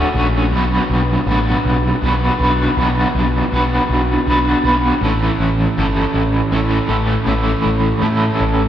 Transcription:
Already playing: overdriven electric guitar D3 A3 C#4 F#4
0.12 picked electric bass A#1, overdriven electric guitar D3 A3 C#4 F#4
0.51 picked electric bass B1, overdriven electric guitar B2 F#3 B3 D4 F#4 B4
0.90 picked electric bass B1
1.26 picked electric bass A1, overdriven electric guitar B3 D4 F#4 B4
1.65 picked electric bass B1
2.01 picked electric bass B1, overdriven electric guitar B3 D4 F#4 B4
2.38 picked electric bass B1, overdriven electric guitar B3 D4 F#4 B4
2.76 picked electric bass B1, overdriven electric guitar B2 F#3 B3 D4 F#4 B4
3.15 picked electric bass B1
3.51 picked electric bass B1, overdriven electric guitar B3 D4 F#4 B4
3.89 picked electric bass B1
4.27 picked electric bass B1, overdriven electric guitar B3 D4 F#4 B4
4.64 picked electric bass B1, overdriven electric guitar B3 D4 F#4 B4
5.01 picked electric bass A1, overdriven electric guitar A2 E3 A3 C#4 E4 A4
5.39 picked electric bass A1
5.78 picked electric bass G1, overdriven electric guitar A3 C#4 E4 A4
6.14 picked electric bass A1
6.52 picked electric bass A1, overdriven electric guitar A3 C#4 E4 A4
6.89 picked electric bass A1, overdriven electric guitar A3 C#4 E4 A4
7.26 picked electric bass A1, overdriven electric guitar A2 E3 A3 C#4 E4 A4
7.65 picked electric bass A1
8.02 picked electric bass A2, overdriven electric guitar A3 C#4 E4 A4
8.40 picked electric bass A1

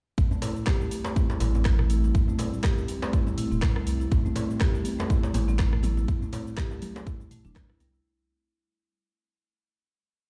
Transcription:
0.18 analog synth bass A1, ambient pad G3 A3 C4, kick, cabasa
0.31 marimba A3, djembe tone, djembe bass, cabasa
0.42 marimba E4, open hi-hat, mid tom, djembe slap, cabasa
0.56 cabasa
0.67 marimba G4, kick, cross-stick, clap, djembe tone, cabasa
0.81 marimba A3, cabasa
0.91 open hi-hat, cabasa
1.04 marimba A3, djembe slap, cabasa
1.16 marimba E4, kick, djembe tone, cabasa
1.30 djembe slap, cabasa
1.40 analog synth bass A1, marimba E4, open hi-hat, mid tom, djembe slap, cabasa
1.55 marimba C4, djembe tone, cabasa
1.65 kick, cross-stick, clap, cabasa
1.79 marimba A3, cross-stick, mid tom
1.90 marimba E4, open hi-hat, cabasa
2.04 marimba E4, djembe tone, cabasa
2.15 analog synth bass A1, kick, cabasa
2.28 marimba A3, djembe bass, cabasa
2.39 marimba E4, open hi-hat, mid tom, djembe slap, djembe tone, cabasa
2.53 cabasa
2.64 marimba G4, kick, cross-stick, clap, cabasa
2.78 marimba A3, cabasa
2.88 open hi-hat, djembe tone, cabasa
3.02 marimba A3, djembe slap, cabasa
3.13 marimba E4, kick, cabasa
3.27 djembe tone, cabasa
3.38 marimba E4, open hi-hat, mid tom, cabasa
3.51 analog synth bass E1, marimba C4, mid tom, cabasa
3.62 kick, cross-stick, clap, cabasa
3.76 marimba A3, cross-stick, djembe tone
3.87 analog synth bass C2, marimba E4, open hi-hat, cabasa
4.00 marimba E4, cabasa
4.11 analog synth bass A1, kick, djembe tone, high conga, cabasa
4.25 marimba A3, djembe bass, cabasa
4.36 marimba E4, open hi-hat, mid tom, djembe slap, cabasa
4.50 cabasa
4.60 marimba G4, kick, cross-stick, clap, high conga, djembe tone, cabasa
4.74 marimba A3, cabasa
4.85 open hi-hat, high conga, cabasa
4.99 marimba A3, djembe slap, djembe tone, cabasa
5.10 marimba E4, kick, cabasa
5.23 djembe slap, cabasa
5.34 analog synth bass A1, marimba E4, open hi-hat, mid tom, djembe slap, high conga, cabasa
5.48 marimba C4, djembe tone, cabasa
5.59 kick, cross-stick, clap, cabasa
5.72 marimba A3, cross-stick, mid tom
5.83 marimba E4, open hi-hat, high conga, djembe tone, low conga, cabasa
5.97 marimba E4, low conga, cabasa
6.08 analog synth bass A1, kick, high conga, cabasa
6.22 marimba A3, djembe bass, cabasa
6.32 marimba E4, open hi-hat, mid tom, djembe slap, djembe tone, cabasa
6.47 cabasa
6.57 marimba G4, kick, cross-stick, clap, cabasa
6.71 marimba A3, djembe tone, cabasa
6.82 open hi-hat, high conga, low conga, cabasa
6.95 marimba A3, djembe slap, cabasa
7.06 marimba E4, kick, cabasa
7.20 djembe tone, cabasa
7.31 marimba A3, open hi-hat, mid tom, cabasa
7.45 analog synth bass E1, marimba D4, mid tom, high conga, low conga, cabasa
7.55 kick, cross-stick, clap, djembe tone, cabasa
7.69 marimba E4, cross-stick
7.80 analog synth bass C2, marimba G3, open hi-hat, high conga, cabasa
7.94 marimba E4, cabasa

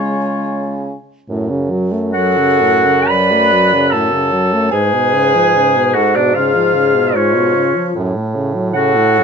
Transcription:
Already playing: bassoon C#3, french horn G#3, clarinet F4, oboe C#5, flute G#5
1.29 bassoon F#2, french horn A2
1.50 french horn C#3
1.71 french horn F#3
1.92 french horn A3
2.13 french horn F#3, oboe F#4, flute A4, clarinet F#5
2.37 french horn C#3
2.61 french horn A2
2.85 french horn C#3
3.07 french horn F#3, oboe B4, flute D5, clarinet B5
3.32 french horn A3
3.52 french horn F#3
3.73 french horn C#3
3.90 french horn A2, oboe A4, flute C#5, clarinet A5
4.12 french horn C#3
4.32 french horn F#3
4.53 french horn A3
4.72 french horn G#2, bassoon G#2, oboe G#4, flute B4, clarinet G#5
4.93 french horn B2
5.14 french horn C#3
5.35 french horn F3
5.55 french horn C#3
5.76 french horn B2
5.94 french horn G#2, oboe F#4, flute A4, clarinet F#5
6.15 french horn B2, oboe D4, flute F#4, clarinet D5
6.34 french horn C#3, oboe F4, flute G#4, clarinet F5
6.55 french horn F3
6.75 french horn C#3
6.95 french horn B2
7.15 french horn G#2, oboe C#4, flute F4, clarinet C#5
7.35 french horn B2
7.55 french horn C#3
7.75 french horn F3
7.96 french horn F#2, bassoon A2
8.16 french horn A2
8.35 french horn C#3
8.55 french horn F#3
8.74 french horn C#3, oboe F#4, flute A4, clarinet F#5
8.96 french horn A2
9.19 french horn F#2

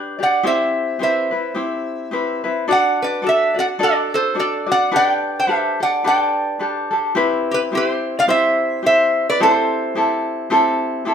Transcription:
Already playing: ukulele D4 G4 B4 D5, resonator guitar played with a steel bar D5 G5
0.19 ukulele D4 G4 D5
0.23 resonator guitar played with a steel bar D5 F#5
0.43 ukulele C4 E4 G4, resonator guitar played with a steel bar C5 E5
0.99 ukulele C4 E4 G4 B4, resonator guitar played with a steel bar C5
1.04 resonator guitar played with a steel bar E5
1.31 ukulele C4 E4 B4
1.55 ukulele C4 E4 G4
2.11 ukulele C4 E4 G4 B4
2.44 ukulele C4 E4 B4
2.68 ukulele D4 F#4 A4 D5, resonator guitar played with a steel bar D5
2.72 resonator guitar played with a steel bar F#5
3.02 resonator guitar played with a steel bar B4 D5
3.22 ukulele D4 F#4 A4 D5
3.27 resonator guitar played with a steel bar A4 E5
3.54 ukulele D4 F#4 D5
3.59 resonator guitar played with a steel bar D5 F#5
3.79 ukulele D4 F#4 A4 D5
3.83 resonator guitar played with a steel bar A4 D5
4.14 resonator guitar played with a steel bar A4 C5
4.34 ukulele D4 F#4 A4 D5
4.39 resonator guitar played with a steel bar A4 D5
4.66 ukulele D4 F#4 D5
4.72 resonator guitar played with a steel bar D5 F#5
4.92 ukulele D4 G4 A4 B4
4.96 resonator guitar played with a steel bar D5 F#5
5.07 resonator guitar played with a steel bar G5
5.39 resonator guitar played with a steel bar C5 E5
5.47 ukulele D4 G4 A4 B4
5.80 ukulele D4 G4 A4, resonator guitar played with a steel bar D5 F#5
6.04 ukulele D4 G4 A4 B4, resonator guitar played with a steel bar G5
6.08 resonator guitar played with a steel bar D5
6.59 ukulele D4 G4 A4 B4
6.91 ukulele D4 G4 A4
7.15 ukulele C4 E4 G4 B4
7.51 resonator guitar played with a steel bar G4 B4
7.72 ukulele C4 E4 G4, resonator guitar played with a steel bar G4
7.77 resonator guitar played with a steel bar C5
8.19 resonator guitar played with a steel bar D5 F5
8.28 ukulele C4 E4 G4, resonator guitar played with a steel bar C5 E5
8.83 ukulele C4 E4 G4, resonator guitar played with a steel bar C5 E5
9.30 resonator guitar played with a steel bar B4 D5
9.40 ukulele C4 E4 G4 A4, resonator guitar played with a steel bar A4 C5
9.95 ukulele C4 E4 G4 A4
10.50 ukulele C4 E4 G4 A4
11.05 ukulele C4 E4 G4 A4

